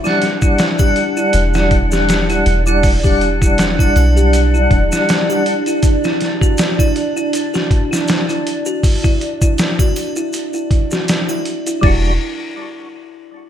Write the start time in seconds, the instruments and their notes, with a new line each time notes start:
Already playing: ambient pad D4 D5
0.04 tonewheel organ G3 D4 F#5, music box E4, snare, maracas
0.22 snare, closed hi-hat
0.42 music box E4, kick, maracas
0.58 snare, closed hi-hat, maracas
0.78 music box G4, kick, triangle, maracas
0.96 closed hi-hat
1.17 music box E4, maracas
1.33 808-style bass E1, closed hi-hat, maracas
1.54 music box E4, snare, maracas
1.71 kick, closed hi-hat
1.91 music box G4, snare, maracas
2.09 snare, closed hi-hat, maracas
2.29 music box E4, closed hi-hat, maracas
2.46 808-style bass E1, closed hi-hat
2.66 tonewheel organ G3 D4 F#5, music box E4, maracas
2.83 kick, open hi-hat, maracas
3.03 tonewheel organ G3 D4 F#5, music box G4, kick, maracas
3.21 closed hi-hat
3.42 music box E4, kick, maracas
3.58 snare, closed hi-hat, maracas
3.79 music box E4, kick, triangle, maracas
3.96 808-style bass B1, closed hi-hat, triangle
4.16 music box G4, maracas
4.33 closed hi-hat, maracas
4.54 music box E4, maracas
4.71 808-style bass E1, kick, closed hi-hat
4.92 music box E4, snare, maracas
5.09 snare, closed hi-hat, maracas
5.30 music box G4, triangle, maracas
5.46 closed hi-hat
5.66 music box E4, closed hi-hat, maracas
5.83 kick, closed hi-hat, maracas
6.04 music box E4, snare, maracas
6.21 snare, closed hi-hat
6.41 music box F#4, kick, maracas
6.58 snare, closed hi-hat, maracas
6.79 music box E4, kick, triangle, maracas
6.96 closed hi-hat
7.16 music box E4, maracas
7.33 closed hi-hat, maracas
7.54 music box F#4, snare, maracas
7.71 kick, closed hi-hat
7.91 music box E4, snare, maracas
8.08 snare, closed hi-hat, maracas
8.29 music box E4, closed hi-hat, maracas
8.47 closed hi-hat
8.66 music box F#4, maracas
8.83 kick, open hi-hat, maracas
9.03 music box E4, kick, maracas
9.21 closed hi-hat
9.42 music box E4, kick, maracas
9.58 snare, closed hi-hat, maracas
9.79 music box F#4, kick, triangle, maracas
9.96 closed hi-hat, triangle
10.16 music box E4, maracas
10.33 closed hi-hat, maracas
10.53 music box E4, maracas
10.71 kick, closed hi-hat
10.91 music box F#4, snare, maracas
11.08 snare, closed hi-hat, maracas
11.29 music box E4, triangle, maracas
11.45 closed hi-hat
11.67 music box E4, closed hi-hat, maracas
11.81 808-style bass E1, tonewheel organ G3 D4, music box E4, kick, crash
11.86 tonewheel organ F#4